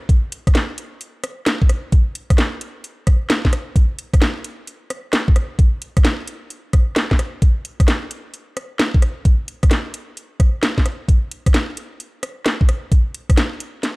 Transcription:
0.09 kick, closed hi-hat
0.32 closed hi-hat
0.47 kick, cross-stick, closed hi-hat
0.55 snare, closed hi-hat
0.78 closed hi-hat
1.01 closed hi-hat
1.24 cross-stick, closed hi-hat
1.46 snare, closed hi-hat
1.62 kick
1.69 cross-stick, closed hi-hat
1.92 kick, closed hi-hat
2.15 closed hi-hat
2.30 kick, cross-stick, closed hi-hat
2.38 snare, closed hi-hat
2.61 closed hi-hat
2.84 closed hi-hat
3.07 kick, cross-stick, closed hi-hat
3.30 snare, closed hi-hat
3.45 kick, snare
3.53 cross-stick, closed hi-hat
3.76 kick, closed hi-hat
3.99 closed hi-hat
4.14 kick, cross-stick, closed hi-hat
4.22 snare, closed hi-hat
4.44 closed hi-hat
4.67 closed hi-hat
4.90 cross-stick, closed hi-hat
5.13 snare, closed hi-hat
5.28 kick
5.36 cross-stick, closed hi-hat
5.59 kick, closed hi-hat
5.82 closed hi-hat
5.97 kick, cross-stick, closed hi-hat
6.05 snare, closed hi-hat
6.28 closed hi-hat
6.50 closed hi-hat
6.73 kick, cross-stick, closed hi-hat
6.96 snare, closed hi-hat
7.11 kick, snare
7.19 cross-stick, closed hi-hat
7.42 kick, closed hi-hat
7.65 closed hi-hat
7.80 kick, cross-stick, closed hi-hat
7.88 snare, closed hi-hat
8.11 closed hi-hat
8.34 closed hi-hat
8.57 cross-stick, closed hi-hat
8.79 snare, closed hi-hat
8.94 kick
9.02 cross-stick, closed hi-hat
9.25 kick, closed hi-hat
9.48 closed hi-hat
9.63 kick, cross-stick, closed hi-hat
9.71 snare, closed hi-hat
9.94 closed hi-hat
10.17 closed hi-hat
10.40 kick, cross-stick, closed hi-hat
10.63 snare, closed hi-hat
10.78 kick, snare
10.86 cross-stick, closed hi-hat
11.08 kick, closed hi-hat
11.31 closed hi-hat
11.46 kick, cross-stick, closed hi-hat
11.54 snare, closed hi-hat
11.77 closed hi-hat
12.00 closed hi-hat
12.23 cross-stick, closed hi-hat
12.46 snare, closed hi-hat
12.61 kick
12.69 cross-stick, closed hi-hat
12.92 kick, closed hi-hat
13.14 closed hi-hat
13.30 kick, cross-stick, closed hi-hat
13.37 snare, closed hi-hat
13.60 closed hi-hat
13.83 snare, closed hi-hat

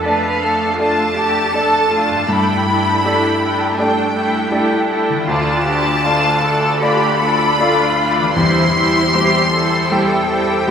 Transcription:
Already playing: F2 A3 D4 D5
0.04 A3 D4 A4 B4 D5 F5 A5
0.41 A3 D4 A4 A5
0.78 A3 D4 F4 A4 D5 A5
1.15 A3 D4 G4 A4 A5
1.53 A3 D4 A4 D5 A5
1.90 A3 D4 F4 A4 A5
2.10 G2
2.15 A3
2.19 D4
2.23 D5
2.28 G2 A3 D4 E4 A4 G5 B5
2.67 A3 D4 A4 G5
3.04 A3 D4 G4 A4 D5 G5
3.41 A3 D4 A4 G5
3.77 A3 D4 G4 A4 D5 G5
4.13 A3 D4 E4 A4 G5
4.51 A3 D4 G4 A4 D5 G5
4.89 A3 D4 A4 G5
5.09 D3
5.14 A3
5.18 F4
5.23 D5
5.27 D2 A3 D4 F4 D5 A5
5.65 A3 D4 F4 G4 D5
6.04 A3 D4 F4 D5
6.42 A3 D4 F4 A4 D5
6.81 A3 D4 F4 G4 D5 B5
7.20 A3 D4 F4 A4 D5
7.58 A3 D4 F4 D5
7.98 A3 D4 F4 D5
8.18 E3
8.23 G3
8.27 G4
8.31 C4
8.36 E2 G3 E4 G4 C5 C6
8.74 G3 E4 G4 C5
9.13 G3 E4 G4 C5
9.52 G3 E4 G4 A4 C5
9.90 G3 E4 G4 C5 G5
10.28 G3 E4 G4 C5
10.65 G3 G4 C5

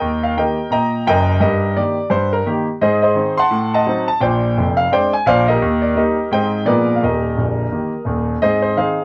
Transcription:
Already playing: A#4 D#5 G5
0.01 D#2
0.24 F5
0.37 D#3 A#3 G4 A#4 D#5 G5
0.70 A#2 D#5 G5 A#5
1.07 F#1 F#2 A#4 D#5 G5
1.40 G2 G4 A#4 D#5
1.76 D#3 A#3 G4 D5
2.10 G2 C5
2.33 A#4
2.46 D#3 A#3 G4
2.81 G#2 G#4 C5 D#5
3.02 G#4 C5 D#5
3.15 D#3 C4 D#4
3.37 F#5 A5 C6
3.51 A2
3.74 D#5 F#5 A5
3.86 F#3 C4 D#4
4.08 A5
4.21 A#1 A#2 C5 D5 G5
4.57 F1 F2
4.77 F5
4.91 G#3 C4 D4 C5 D5 G5
5.13 G#5
5.26 A#1 A#2 C5 D5 F5
5.48 G4 A#4 D#5
5.62 D#2
5.82 D5
5.96 G3 A#3 D#4 G4 A#4 D#5
6.31 G#2 G#3 C4 D#4 C5 D#5 G5
6.65 A#2 F3 B3 G#4 A#4 B4 D5
6.96 F5
7.02 D#1 D#2 G4 A#4 D#5
7.37 A#0 A#1
7.72 D#3 A#3 G4
8.05 D#1 D#2
8.42 G#2 C4 G#4 C5 D#5
8.62 C5
8.76 D#3 C4 D#4 G#4 C5 F5

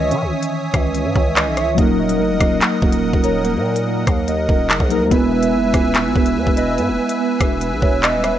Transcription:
Already playing: C#2 D#3 E3 C#4 C#5 D#5 E5 G#5 D#6
0.11 E3 C#4, closed hi-hat
0.22 C#2
0.32 C#4
0.43 closed hi-hat
0.53 C#4
0.74 C#2, kick, cross-stick, closed hi-hat
0.94 C#4, closed hi-hat
1.05 G#2
1.16 C#2 C#4 C#5, kick
1.36 D#5, clap, closed hi-hat
1.47 B1
1.57 C#5 E5, cross-stick, closed hi-hat
1.62 C#2
1.75 D#1 F#3 A#3 A#4 D#5 F#5, kick, closed hi-hat
1.79 D#4 A#4
1.99 A#3 D#5
2.09 closed hi-hat
2.19 F#1 A#3
2.30 D#1
2.40 D#1, kick, cross-stick, closed hi-hat
2.61 A#3, clap, closed hi-hat
2.82 D#1 A#3, kick
2.92 closed hi-hat
3.13 D#1, kick
3.23 A#4 C#5, closed hi-hat
3.45 A#3, closed hi-hat
3.55 A#2
3.66 A#3
3.76 closed hi-hat
3.87 A#3
4.07 D#2, kick, cross-stick, closed hi-hat
4.28 A#3 D#5, closed hi-hat
4.49 D#1 A#3, kick
4.70 F#1, clap, closed hi-hat
4.80 A#1, kick
4.89 F#3 A#3 D#4 A#4, closed hi-hat
5.01 D#2
5.08 E1 G#3 B3 B4 E5 G#5 E6, kick, closed hi-hat
5.12 B3 E4 B4
5.32 B3 E5
5.43 closed hi-hat
5.53 F#1 B3
5.63 E1
5.74 D#1, kick, cross-stick, closed hi-hat
5.95 B3, clap, closed hi-hat
6.05 G#1
6.16 E1 B3, kick
6.26 closed hi-hat
6.36 E2
6.47 E1, kick
6.57 B4 D#5, closed hi-hat
6.78 G#2 B3, closed hi-hat
6.88 E1
6.99 B3
7.09 closed hi-hat
7.20 B3
7.41 E1, kick, cross-stick, closed hi-hat
7.61 B3, closed hi-hat
7.72 B1
7.82 E1 B3 C#5, kick
8.03 D#5, clap, closed hi-hat
8.13 D#1
8.24 B4 E5, cross-stick, closed hi-hat
8.29 E1

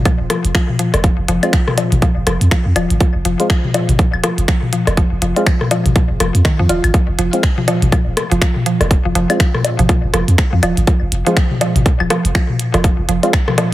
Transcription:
0.05 F3, kick, closed hi-hat, claves
0.20 D#1
0.30 F3, cross-stick, closed hi-hat
0.44 F1, closed hi-hat
0.55 F3, finger snap, kick, closed hi-hat
0.69 mid tom
0.79 F3, closed hi-hat
0.94 F1, cross-stick, closed hi-hat, low woodblock
1.04 F3, kick, closed hi-hat
1.18 F1
1.28 F1 F3, closed hi-hat
1.43 G#3 C4 F4, closed hi-hat, claves, low woodblock
1.53 F3, finger snap, kick, closed hi-hat
1.68 cross-stick, mid tom
1.78 F3, closed hi-hat, low woodblock
1.92 G#1, closed hi-hat, mid tom
2.02 F3, kick, closed hi-hat
2.17 F1
2.27 F1 F3, cross-stick, closed hi-hat
2.41 F2, closed hi-hat
2.51 F3, finger snap, kick, closed hi-hat
2.66 F2
2.76 D#1 F3, closed hi-hat, claves, low woodblock
2.90 G#1, closed hi-hat
3.00 F3, kick, closed hi-hat
3.15 F1
3.25 F1 F3, closed hi-hat
3.40 G#3 C4 F4, closed hi-hat
3.50 F3, finger snap, kick, closed hi-hat
3.64 mid tom
3.74 F3, closed hi-hat, low woodblock
3.89 G#1, closed hi-hat, mid tom
3.99 F3, kick, closed hi-hat
4.13 D#1, claves
4.23 F3, cross-stick, closed hi-hat
4.38 F1, closed hi-hat
4.48 F3, finger snap, kick, closed hi-hat
4.63 mid tom
4.73 F3, closed hi-hat
4.87 F1, cross-stick, closed hi-hat, low woodblock
4.97 F3, kick, closed hi-hat
5.12 F1
5.22 F1 F3, closed hi-hat
5.36 G#3 C4 F4, closed hi-hat, low woodblock
5.46 F3, finger snap, kick, closed hi-hat, claves
5.61 cross-stick, mid tom
5.71 F3, closed hi-hat, low woodblock
5.86 G#1, closed hi-hat, mid tom
5.96 F3, kick, closed hi-hat
6.10 F1
6.20 F1 F3, cross-stick, closed hi-hat
6.35 F2, closed hi-hat
6.45 D#3, finger snap, kick, closed hi-hat
6.59 F2 F3
6.69 D#1 F4, closed hi-hat, low woodblock
6.84 G#1, closed hi-hat, claves
6.94 F3, kick, closed hi-hat
7.08 F1
7.19 F1 F3, closed hi-hat
7.33 G#3 C4 F4, closed hi-hat
7.43 finger snap, kick, closed hi-hat
7.58 F3, mid tom
7.68 F3, closed hi-hat, low woodblock
7.82 G#1, closed hi-hat, mid tom
7.92 F3, kick, closed hi-hat, claves
8.07 D#1
8.17 cross-stick, closed hi-hat
8.31 F1 F3, closed hi-hat
8.41 F3, finger snap, kick, closed hi-hat
8.56 mid tom
8.66 F3, closed hi-hat
8.81 F1, cross-stick, closed hi-hat, low woodblock
8.91 kick, closed hi-hat
9.05 F1 F3
9.15 F1 F3, closed hi-hat
9.30 G#3 C4 F4, closed hi-hat, claves, low woodblock
9.40 F3, finger snap, kick, closed hi-hat
9.54 cross-stick, mid tom
9.64 closed hi-hat, low woodblock
9.79 G#1 F3, closed hi-hat, mid tom
9.89 F3, kick, closed hi-hat
10.04 F1
10.14 F1 F3, cross-stick, closed hi-hat
10.28 F2, closed hi-hat
10.38 finger snap, kick, closed hi-hat
10.53 F2 F3
10.63 D#1 F3, closed hi-hat, claves, low woodblock
10.77 G#1, closed hi-hat
10.87 F3, kick, closed hi-hat
11.02 F1
11.12 F1, closed hi-hat
11.27 F3 G#3 C4 F4, closed hi-hat
11.37 F3, finger snap, kick, closed hi-hat
11.51 mid tom
11.61 F3, closed hi-hat, low woodblock
11.76 G#1, closed hi-hat, mid tom
11.86 kick, closed hi-hat
12.00 D#1 F3, claves
12.10 F3, cross-stick, closed hi-hat
12.25 F1, closed hi-hat
12.35 F3, finger snap, kick, closed hi-hat
12.49 mid tom
12.60 closed hi-hat
12.74 F1 F3, cross-stick, closed hi-hat, low woodblock
12.84 F3, kick, closed hi-hat
12.99 F1
13.09 F1 F3, closed hi-hat
13.23 G#3 C4 F4, closed hi-hat, low woodblock
13.33 finger snap, kick, closed hi-hat, claves
13.48 F3, cross-stick, mid tom
13.58 F3, cross-stick, closed hi-hat, low woodblock

